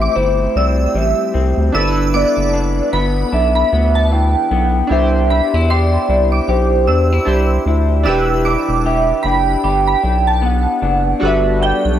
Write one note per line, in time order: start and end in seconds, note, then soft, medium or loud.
0.00 1.74 A2 medium
0.00 0.55 C4 soft
0.00 1.69 C4 medium
0.00 0.15 E4 medium
0.00 1.70 E4 soft
0.00 0.51 G4 medium
0.00 1.70 G4 medium
0.00 1.71 C5 medium
0.00 0.17 E5 loud
0.00 0.16 D6 medium
0.15 0.48 G1 medium
0.15 1.74 E4 medium
0.15 0.58 C5 medium
0.56 0.87 C2 medium
0.56 1.33 C4 medium
0.56 0.98 D5 medium
0.56 1.16 E6 medium
0.95 1.14 A1 medium
0.95 4.11 G3 medium
0.95 1.59 E5 medium
1.34 1.54 C2 medium
1.34 1.83 C4 soft
1.57 1.70 D2 medium
1.72 2.25 G1 loud
1.72 4.85 D4 medium
1.72 2.52 D4 medium
1.72 4.86 E4 medium
1.72 4.87 A4 medium
1.72 2.14 E6 medium
1.77 4.88 B4 medium
2.14 2.92 B3 medium
2.14 2.90 D5 loud
2.14 2.51 D6 medium
2.37 2.81 F#1 medium
2.54 3.31 D4 medium
2.93 3.24 G1 medium
2.93 3.72 B3 medium
2.93 3.30 B5 medium
3.33 3.64 B1 medium
3.33 5.00 D4 medium
3.33 4.14 E5 loud
3.55 3.71 B5 medium
3.73 4.35 D2 loud
3.73 4.51 B3 medium
3.95 4.10 A5 medium
4.12 5.33 E3 medium
4.12 4.93 G5 loud
4.51 4.82 B1 medium
4.51 8.01 B3 medium
4.87 5.41 C2 loud
4.87 7.22 D4 medium
4.87 7.23 E4 soft
4.87 7.23 G4 medium
4.91 5.70 G4 medium
4.91 7.24 C5 medium
4.91 5.72 E5 loud
5.30 5.54 D4 medium
5.30 5.53 B5 medium
5.54 5.98 E2 medium
5.54 6.08 E4 soft
5.70 6.48 G4 medium
5.70 6.51 D5 medium
5.70 5.92 C6 medium
6.09 6.40 C2 medium
6.09 6.87 E4 medium
6.32 6.47 D6 medium
6.48 6.89 B1 medium
6.48 8.07 G4 medium
6.48 7.67 C5 medium
6.87 7.19 E2 loud
6.87 7.12 D4 medium
6.87 7.47 E6 medium
7.12 7.66 E4 medium
7.25 7.59 C2 medium
7.25 8.02 D4 soft
7.25 8.04 E4 soft
7.25 8.05 G4 soft
7.25 8.06 C5 soft
7.66 8.08 D2 loud
7.66 8.46 E4 medium
8.03 8.57 E1 loud
8.03 11.20 E3 medium
8.03 11.17 D4 medium
8.03 11.17 E4 medium
8.03 11.18 G4 medium
8.03 8.43 E6 medium
8.08 8.85 G4 medium
8.08 11.19 B4 medium
8.45 9.25 D4 medium
8.45 8.83 D6 medium
8.69 9.13 E1 medium
8.86 9.64 G4 medium
8.86 9.28 E5 loud
9.23 9.56 F#1 medium
9.23 10.03 D4 medium
9.23 9.65 G5 loud
9.23 9.61 B5 medium
9.64 9.96 G1 medium
9.64 11.20 G4 medium
9.64 10.47 G5 loud
9.87 10.03 B5 medium
10.03 10.67 B1 medium
10.03 10.82 D4 medium
10.27 10.42 A5 medium
10.42 11.99 B3 medium
10.42 11.28 F#5 loud
10.82 11.14 F#1 medium
10.82 11.60 D4 medium
11.20 11.73 G1 loud
11.20 11.99 G3 medium
11.20 11.99 D4 medium
11.20 11.99 F#4 medium
11.20 11.99 F#4 soft
11.20 11.99 A4 soft
11.25 11.99 B4 medium
11.25 11.67 E5 medium
11.61 11.99 D4 medium
11.61 11.84 G5 medium
11.65 11.99 D5 loud
11.85 11.99 B1 medium